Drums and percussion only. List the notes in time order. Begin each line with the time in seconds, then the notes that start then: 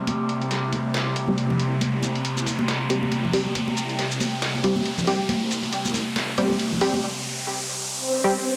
0.07 kick, closed hi-hat, high conga
0.29 closed hi-hat
0.42 closed hi-hat
0.51 snare, closed hi-hat
0.73 kick, closed hi-hat, high conga
0.94 snare, closed hi-hat
1.16 kick, closed hi-hat
1.28 high conga
1.38 closed hi-hat
1.50 low conga
1.60 closed hi-hat
1.81 kick, closed hi-hat, muted conga, high conga
2.03 closed hi-hat, muted conga, shaker
2.15 closed hi-hat
2.25 closed hi-hat
2.37 muted conga, shaker
2.46 kick, open hi-hat, high conga, shaker
2.59 muted conga
2.68 snare, closed hi-hat
2.89 closed hi-hat, muted conga
3.03 high conga
3.12 closed hi-hat, muted conga
3.25 low conga
3.33 kick, open hi-hat
3.47 muted conga
3.55 kick, closed hi-hat, high conga
3.68 muted conga
3.77 closed hi-hat, shaker
3.90 closed hi-hat
3.99 snare, closed hi-hat, muted conga
4.11 shaker
4.20 kick, open hi-hat, muted conga, high conga, shaker
4.42 snare, closed hi-hat
4.55 muted conga
4.64 kick, closed hi-hat
4.76 muted conga, high conga
4.86 closed hi-hat
4.98 low conga, shaker
5.07 open hi-hat, muted conga
5.29 kick, closed hi-hat, muted conga, high conga
5.51 closed hi-hat, shaker
5.63 closed hi-hat, muted conga
5.73 closed hi-hat
5.85 muted conga, shaker
5.94 kick, open hi-hat, high conga, shaker
6.16 snare, closed hi-hat, muted conga
6.38 closed hi-hat, muted conga
6.50 high conga
6.59 closed hi-hat
6.72 muted conga, low conga
6.81 kick, open hi-hat
6.94 muted conga